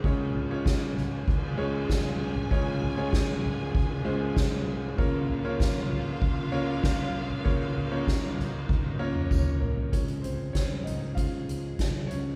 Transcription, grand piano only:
X:1
M:4/4
L:1/16
Q:1/4=97
K:Db
V:1 name="Grand piano"
[A,DFAd]2 z [A,DFAd]4- [A,DFAd] z2 [A,DFAd]4 z2 | [A,DFAd]2 z [A,DFAd]4- [A,DFAd] z2 [A,DFAc]4 z2 | [B,DFBd]2 z [B,DFBd]4- [B,DFBd] z2 [B,DFBd]4 z2 | [B,DFBd]2 z [B,DFBd]4- [B,DFBd] z2 [B,DFBd]4 [B,B]2 |
d2 [Cc]2 [Dd]2 [Ee]2 [Ff]6 [Dd]2 |]
V:2 name="Grand piano" clef=bass
D,6 z8 z2 | D,6 z8 z2 | D,6 z8 z2 | D,6 z8 z2 |
[F,A,D]6 z2 [F,A,D]2 z6 |]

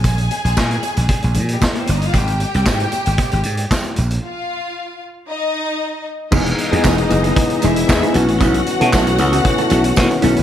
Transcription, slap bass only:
X:1
M:4/4
L:1/16
Q:1/4=115
K:Ablyd
V:1 name="Slap bass" clef=bass
B,,,3 B,,, B,,2 z B,,, z B,,, B,,2 z2 G,,,2 | A,,,3 C,, A,,2 z A,,, z A,,, A,,2 z2 B,,,2 | z16 | [K:E] E,,,2 z E,, E,,,2 F,,,2 z2 E,,,2 E,, z B,,, A,,, |
B,,,2 z B,, B,,,2 C,,2 z2 B,,,2 B,, z B,,, G,,, |]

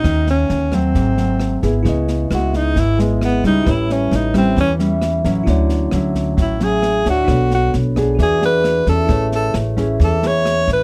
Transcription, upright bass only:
X:1
M:4/4
L:1/8
Q:1/4=133
K:C#m
V:1 name="Upright bass" clef=bass
D,,2 D,,2 G,,,3 G,,, | C,,2 C,,2 G,,,3 C,, | A,,,2 A,,,2 E,,3 A,,, | =D,,2 D,,2 A,,,3 D,, |
B,,,2 B,,,2 E,,3 E,, | A,,,2 A,,,2 E,,3 A,,, |]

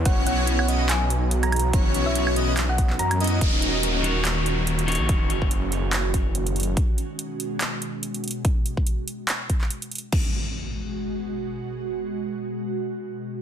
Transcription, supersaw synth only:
X:1
M:4/4
L:1/8
Q:"Swing 16ths" 1/4=143
K:G#m
V:1 name="Supersaw synth"
[B,CEFc]3 [B,CEFd] z4 | [B,CEFc]3 [B,CEFd] z3 [B,CEFd] | [CDd]3 [CDFAf] z4 | z8 |
z8 | z8 | z8 | z8 |]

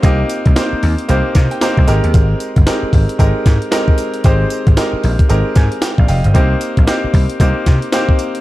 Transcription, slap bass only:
X:1
M:4/4
L:1/16
Q:"Swing 16ths" 1/4=114
K:Cm
V:1 name="Slap bass" clef=bass
C,,2 z C,, z2 E,, z C,, z C, z2 C,, A,,, E,, | A,,,2 z G,,, z2 A,,, z A,,, z A,, z4 z | A,,,2 z A,,, z2 B,,, z A,,, z A,, z2 B,,, F,,, G,,, | C,,2 z B,,, z2 C,, z C,, z C, z4 z |]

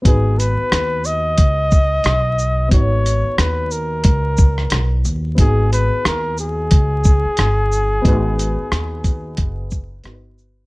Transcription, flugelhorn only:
X:1
M:4/4
L:1/8
Q:"Swing 16ths" 1/4=90
K:G#m
V:1 name="Flugelhorn"
G B2 d4- d | c2 B A4 z | G B A G4- G- | G6 z2 |]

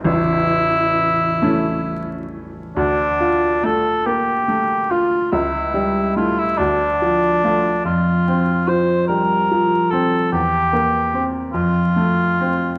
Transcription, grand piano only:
X:1
M:6/8
L:1/8
Q:3/8=47
K:Dm
V:1 name="Grand piano"
[A,,,,A,,,]3 [A,^CE]3 | D,, F A, B, A, F | ^C,, G, [A,E] D,, F, [A,F] | F,, C F, G, F, C |
E,, B, C F,, A, C |]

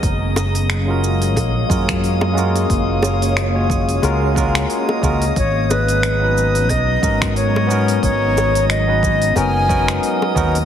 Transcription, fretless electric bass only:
X:1
M:4/4
L:1/8
Q:"Swing 16ths" 1/4=90
K:G#dor
V:1 name="Fretless electric bass" clef=bass
F,,,4 A,,, F,,3 | F,,,4 C,,2 z C,, | G,,,4 B,,, G,,3 | G,,,4 F,,,2 z D,, |]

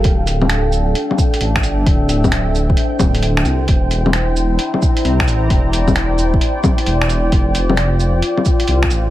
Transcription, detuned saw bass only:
X:1
M:4/4
L:1/8
Q:"Swing 16ths" 1/4=132
K:Dm
V:1 name="Detuned saw bass" clef=bass
D,,,4 z2 A,,, G,,, | D,,,4 z D,,,2 C,, | E,,,4 z2 C,, A,,, | E,,,4 z2 E,,,2 |
F,,,4 z2 C,, A,,, |]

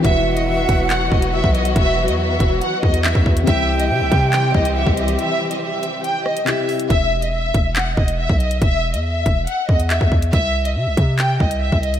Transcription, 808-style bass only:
X:1
M:4/4
L:1/16
Q:1/4=140
K:Em
V:1 name="808-style bass" clef=bass
E,,,6 E,,,4 E,,,3 B,,,3 | E,,,3 E,,3 E,,,2 z2 E,,3 E,,3 | C,,4 C, C,, C,4 C,,3 C,,3 | z16 |
E,,,6 E,,,4 E,,,3 B,,,3 | E,,,3 E,,3 E,,,2 z2 E,,3 E,,3 | C,,4 C, C,, C,4 C,,3 C,,3 |]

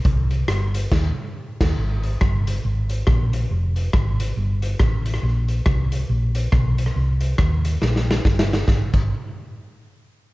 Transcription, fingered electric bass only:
X:1
M:4/4
L:1/8
Q:"Swing" 1/4=139
K:Cphr
V:1 name="Fingered electric bass" clef=bass
C,,2 G,,,2 E,, z2 E,, | A,,,2 G,,,2 A,,,2 B,,,2 | F,,,2 A,,,2 G,,,2 =A,,,2 | B,,,2 C,,2 B,,,2 _C,,2 |
C,,2 E,,2 B,,,2 G,,,2 | A,,, A,,, z6 |]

